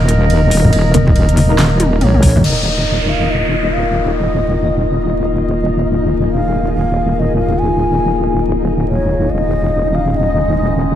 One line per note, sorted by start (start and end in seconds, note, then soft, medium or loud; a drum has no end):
0.00 0.51 D#1 loud
0.00 2.41 D#3 medium
0.00 2.41 A#3 medium
0.00 2.43 D#4 medium
0.00 2.43 A#4 medium
0.00 2.47 A#4 medium
0.00 1.97 D#5 loud
0.09 closed hi-hat medium
0.30 ride soft
0.51 0.72 D#1 medium
0.51 open hi-hat loud
0.65 low conga medium
0.73 2.03 D#1 loud
0.73 ride medium
0.94 1.04 A#3 medium
0.94 1.04 D#4 medium
0.94 1.04 A#4 loud
0.94 closed hi-hat medium
0.94 high conga loud
1.08 kick medium
1.16 ride soft
1.29 closed hi-hat soft
1.37 open hi-hat medium
1.37 high conga medium
1.50 1.56 A#3 medium
1.50 1.56 D#4 medium
1.50 1.56 A#4 medium
1.59 snare loud
1.59 clap medium
1.59 ride medium
1.80 closed hi-hat medium
1.80 high tom medium
2.01 2.22 A#1 medium
2.01 2.46 C#5 medium
2.01 mid tom medium
2.01 ride soft
2.14 mid tom medium
2.23 2.43 A#1 medium
2.23 kick medium
2.23 open hi-hat loud
2.36 mid tom medium
2.36 high conga medium
2.36 low conga medium
2.44 9.29 D#1 medium
2.44 10.95 D#3 medium
2.44 9.26 A#3 medium
2.44 10.95 D#4 medium
2.44 9.29 F4 medium
2.44 3.11 D#5 loud
2.44 5.90 D#5 medium
2.44 crash medium
2.44 downlifter medium
2.66 2.80 A#3 medium
2.66 2.80 D#4 medium
2.66 2.80 A#4 medium
3.09 3.32 F5 loud
3.22 3.28 A#3 medium
3.22 3.28 D#4 medium
3.22 3.28 A#4 medium
3.30 3.75 D#5 medium
3.73 4.15 F5 loud
4.16 4.76 D#5 medium
4.37 4.47 A#3 medium
4.37 4.47 D#4 medium
4.37 4.47 A#4 loud
4.93 4.99 A#3 medium
4.93 4.99 D#4 medium
4.93 4.99 A#4 medium
5.88 9.33 G#4 medium
6.09 6.23 A#3 medium
6.09 6.23 A#4 medium
6.31 6.70 F5 medium
6.65 6.71 A#3 medium
6.65 6.71 A#4 medium
6.73 7.16 F5 medium
7.16 7.37 D#5 medium
7.16 7.20 F5 medium
7.38 7.60 F5 medium
7.59 8.45 G#5 loud
8.36 8.42 A#3 medium
8.36 8.42 A#4 medium
8.87 9.32 C#5 medium
9.00 9.06 A#3 medium
9.00 9.06 D#4 medium
9.00 9.06 A#4 medium
9.08 9.23 A#3 medium
9.08 9.23 D#4 medium
9.08 9.23 A#4 medium
9.30 10.95 D#1 medium
9.30 10.95 G#3 medium
9.30 10.95 C#4 medium
9.30 9.96 D#5 loud
9.30 10.95 D#5 medium
9.51 9.66 A#3 medium
9.51 9.66 D#4 medium
9.51 9.66 A#4 loud
9.95 10.18 F5 loud
10.08 10.13 A#3 medium
10.08 10.13 D#4 medium
10.08 10.13 A#4 medium
10.16 10.80 D#5 loud